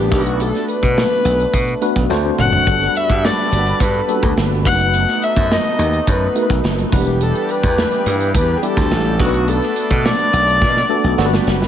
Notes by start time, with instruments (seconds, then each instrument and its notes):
Already playing: slap bass A1, tine electric piano G3 B3 D4 E4 A#4 B4, analog synth pad B3 D4, viola G4
0.11 slap bass B1, tine electric piano A3 B3 D4 F#4 A#4, analog synth pad A3, viola F#4, kick, open hi-hat
0.18 tine electric piano B4
0.26 closed hi-hat
0.40 viola A4, closed hi-hat
0.54 snare, closed hi-hat
0.68 viola B4, closed hi-hat
0.83 slap bass B2, kick, closed hi-hat
0.98 snare
1.25 slap bass B1, closed hi-hat
1.40 closed hi-hat
1.54 slap bass B2, kick, closed hi-hat
1.68 closed hi-hat
1.81 tine electric piano A3 B3 D4 F#4 B4, closed hi-hat
1.96 slap bass B1, kick, snare, closed hi-hat
2.09 slap bass D2, analog synth pad D3 C4 F#4, tine electric piano A3 C4 D4 F#4 C5, snare
2.38 slap bass F#1, viola F#5, mid tom
2.53 floor tom
2.66 slap bass G1, tine electric piano G3 B3 D4 F#4 A4, analog synth pad G3 A4 B4, kick, closed hi-hat
2.81 snare, closed hi-hat
2.95 viola E5, closed hi-hat
3.10 slap bass G2, kick, closed hi-hat
3.25 viola D5, snare
3.52 slap bass G1, closed hi-hat
3.66 closed hi-hat
3.80 slap bass G2, viola B4, kick, closed hi-hat
3.94 closed hi-hat
4.08 tine electric piano G3 A#3 D4 F#4 A4, closed hi-hat
4.15 tine electric piano B3
4.23 slap bass D2, kick, closed hi-hat
4.37 slap bass G1, snare
4.64 slap bass F#1, tine electric piano A3 B3 D4 F#4 B4, analog synth pad A3 B3 D#4, viola F#5, kick, open hi-hat
4.72 tine electric piano D#4
4.80 closed hi-hat
4.94 closed hi-hat
5.08 snare, closed hi-hat
5.22 viola E5, closed hi-hat
5.36 slap bass F#2, kick, closed hi-hat
5.52 viola D#5, snare
5.65 closed hi-hat
5.79 slap bass D#2, closed hi-hat
5.93 closed hi-hat
6.07 slap bass F#2, viola B4, kick, closed hi-hat
6.35 tine electric piano A3 B3 D#4 F#4 A#4, closed hi-hat
6.43 tine electric piano B4
6.50 slap bass B1, kick, snare, closed hi-hat
6.64 slap bass F#1, snare
6.78 closed hi-hat
6.92 slap bass E1, analog synth pad E3 D4 G4, tine electric piano G3 B3 D4 E4 B4, viola G4, kick, open hi-hat
7.07 closed hi-hat
7.21 viola A4, closed hi-hat
7.35 closed hi-hat
7.49 viola B4, closed hi-hat
7.63 slap bass E2, kick, closed hi-hat
7.78 snare
7.92 closed hi-hat
8.06 slap bass G2, closed hi-hat
8.20 closed hi-hat
8.35 slap bass E2, viola B4, kick, closed hi-hat
8.57 viola G#4
8.62 tine electric piano G3 B3 D4 E4 G4, viola A4, closed hi-hat
8.77 slap bass D2, kick, snare, closed hi-hat
8.91 slap bass A1, snare
9.05 closed hi-hat
9.19 slap bass B1, tine electric piano A3 B3 D4 F#4 A4, analog synth pad A3 B3 D4, viola F#4, kick, open hi-hat
9.26 tine electric piano B4
9.34 closed hi-hat
9.48 viola A4, closed hi-hat
9.62 snare, closed hi-hat
9.76 closed hi-hat
9.90 slap bass B2, kick, closed hi-hat
10.05 viola D5, snare
10.19 closed hi-hat
10.33 slap bass B1, closed hi-hat
10.48 closed hi-hat
10.62 slap bass B2, kick, snare
10.77 snare
10.89 tine electric piano A3 B3 D4 F#4 A4
11.04 slap bass B1
11.18 slap bass G1, tine electric piano G3 B3 D4 F#4 A4, analog synth pad G3 F#4 B4, snare
11.25 tine electric piano B4
11.34 snare
11.47 slap bass F#1, snare
11.62 snare